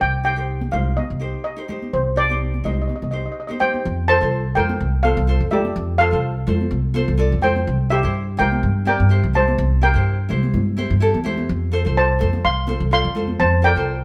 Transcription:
0.01 upright bass C2, steel pan G5
0.23 ukulele D#4 G4 C5, steel pan G5
0.36 ukulele D#4 G4 C5
0.61 high conga
0.71 upright bass C2, ukulele D#4 G4 C5, steel pan F5, low conga
0.97 steel pan D#5, high conga
1.10 upright bass C2
1.19 ukulele D#4 G4 C5
1.44 steel pan D#5
1.56 ukulele D#4 G4 C5
1.68 ukulele D#4 G4 C5, low conga
1.82 high conga
1.93 upright bass C2, steel pan C5
2.16 ukulele D#4 G4 C5, steel pan D5
2.29 ukulele D#4 G4 C5, high conga
2.54 high conga
2.64 upright bass C2, ukulele D#4 G4 C5, steel pan D#5, low conga
2.74 steel pan D#5
2.82 steel pan D#5
2.88 steel pan D#5, high conga
2.96 steel pan D#5
3.02 upright bass C2, steel pan D#5, low conga
3.11 ukulele D#4 G4 C5, steel pan D#5
3.18 steel pan D#5
3.26 steel pan D#5
3.32 steel pan D#5
3.40 steel pan D#5
3.47 ukulele D#4 G4 C5, steel pan D#5, high conga
3.60 ukulele D#4 G4 C5, steel pan C5 G5, low conga
3.74 high conga
3.85 upright bass F2
4.08 ukulele F4 A4 C5, steel pan C5 A5
4.21 upright bass C2, ukulele F4 A4 C5
4.55 upright bass F2, ukulele F4 A4 C5, steel pan A#4 G5, low conga
4.69 high conga
4.80 upright bass C2
5.03 ukulele F4 A4 C5, steel pan A4 F5, high conga
5.17 upright bass C2
5.27 ukulele F4 A4 C5
5.40 upright bass F2
5.51 ukulele F4 A4 D5, steel pan G4 E5, low conga
5.65 high conga
5.76 upright bass F2
5.98 ukulele F4 A4 C5, steel pan A4 F5
6.11 upright bass C2, ukulele F4 A4 C5
6.47 upright bass F2, ukulele F4 A4 C5, low conga
6.61 high conga
6.71 upright bass C2
6.94 ukulele F4 A4 C5, high conga
7.08 upright bass C2
7.18 ukulele F4 A4 D5
7.32 upright bass F2
7.42 ukulele F4 A4 C5, steel pan C5 G5, low conga
7.56 high conga
7.67 upright bass C2
7.90 ukulele E4 G4 C5, steel pan G4 E5
8.03 upright bass G2, ukulele E4 G4 C5
8.37 upright bass C2, ukulele E4 G4 C5, steel pan A#4 G5, low conga
8.52 high conga
8.63 upright bass G2
8.85 ukulele E4 G4 D5, steel pan A#4 G5, high conga
9.00 upright bass G2
9.09 ukulele E4 G4 C5
9.24 upright bass C2
9.33 ukulele E4 G4 C5, steel pan C5 A5, low conga
9.48 high conga
9.58 upright bass C2
9.81 ukulele E4 G4 C5, steel pan A#4 G5
9.94 upright bass G2, ukulele E4 G4 C5
10.29 upright bass C2, ukulele E4 G4 C5, low conga
10.43 high conga
10.54 upright bass G2, low conga
10.77 ukulele E4 G4 C5, high conga
10.90 upright bass G2
11.00 ukulele E4 G4 A4
11.14 upright bass E2, high conga
11.24 ukulele E4 G4 C5, low conga
11.38 high conga
11.49 upright bass F2
11.72 ukulele F4 A4 C5
11.85 upright bass C2, ukulele F4 A4 C5
11.97 steel pan C5 A5
12.19 upright bass F2, ukulele F4 A4 C5, low conga
12.33 high conga
12.45 upright bass C2, steel pan F5 C6
12.67 ukulele F4 A4 C5, high conga
12.80 upright bass C2
12.91 ukulele F4 A4 D5, steel pan F5 C6
13.04 upright bass F2
13.15 ukulele F4 A4 C5, low conga
13.28 high conga
13.40 upright bass F2, steel pan C5 A5
13.62 ukulele F4 A4 D5, steel pan A#4 G5
13.75 upright bass C2, ukulele F4 A4 C5

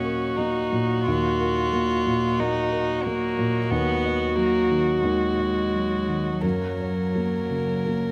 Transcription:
Already playing: felt piano D#2 A#2 A#3 A#4, harmonium F#3 A#3 D#5, cello C#4, violin F#4
0.04 felt piano A#4
0.37 felt piano A#3, cello D#4
0.72 felt piano A#2
1.06 felt piano D#2, cello F4
1.40 felt piano A#4
1.73 felt piano A#3
2.06 felt piano A#2
2.40 felt piano A#3, cello D#4
2.72 felt piano A#4
3.04 cello A#3, felt piano A#3
3.38 felt piano A#2
3.70 felt piano D#2, harmonium F#3 F#4 D#5, cello B3, violin F#4
4.04 felt piano D#5
4.36 felt piano F#3, cello A#3
4.70 felt piano D#3
5.04 felt piano D#2, cello G#3
5.37 felt piano D#5
5.74 felt piano F#3
6.08 felt piano D#3
6.41 felt piano F#2, cello F#3, harmonium A#3 C#5, violin A#4
6.80 felt piano C#5
7.15 felt piano A#3
7.50 felt piano C#3
7.86 felt piano A#3

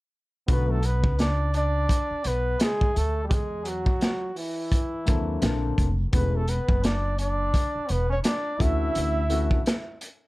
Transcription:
0.48 upright bass B1, grand piano D3 F#3 A3 B3 F#4, trombone B3, flugelhorn B4, kick, closed hi-hat
0.69 trombone A3, flugelhorn A4
0.83 trombone B3, flugelhorn B4, closed hi-hat
1.04 upright bass C#2, kick
1.19 trombone D4, flugelhorn D5, snare, closed hi-hat
1.54 trombone D4, flugelhorn D5, closed hi-hat
1.89 kick, closed hi-hat
2.11 muted upright bass stroke
2.24 upright bass B1, trombone B3, flugelhorn B4, closed hi-hat
2.60 trombone G#3, flugelhorn G#4, snare, closed hi-hat
2.81 kick
2.95 upright bass D2, trombone A3, flugelhorn A4, closed hi-hat
3.24 trombone G3, flugelhorn G4
3.29 upright bass E2, trombone G#3, kick, closed hi-hat
3.34 flugelhorn G#4
3.65 trombone F#3, flugelhorn F#4, closed hi-hat
3.86 kick
4.01 snare, closed hi-hat
4.35 trombone E3, flugelhorn E4, open hi-hat
4.72 kick, closed hi-hat
5.06 upright bass D#2, grand piano F#3 A#3 C4 D4 A4, kick, closed hi-hat
5.41 upright bass A#1, grand piano D3 A#3 C4 D4 A4, snare, closed hi-hat
5.78 upright bass F1, kick, closed hi-hat
6.12 upright bass E1, grand piano E3 A3 B3 C#4 G#4, trombone B3, flugelhorn B4, kick, closed hi-hat
6.33 trombone A3, flugelhorn A4
6.48 trombone B3, flugelhorn B4, closed hi-hat
6.68 upright bass F#1, kick
6.83 trombone D4, flugelhorn D5, snare, closed hi-hat
7.18 trombone D4, flugelhorn D5, closed hi-hat
7.54 kick, closed hi-hat
7.75 muted upright bass stroke
7.89 upright bass E1, trombone B3, flugelhorn B4, closed hi-hat
8.10 trombone C#4, flugelhorn C#5
8.24 trombone D4, flugelhorn D5, snare, closed hi-hat
8.59 upright bass D2, grand piano E3 A3 C#4 D4 F#4, trombone E4, flugelhorn E5, kick, closed hi-hat
8.95 upright bass D2, closed hi-hat
9.29 grand piano E3 A3 C#4 D4 F#4, closed hi-hat
9.51 kick
9.66 snare, closed hi-hat
10.01 closed hi-hat

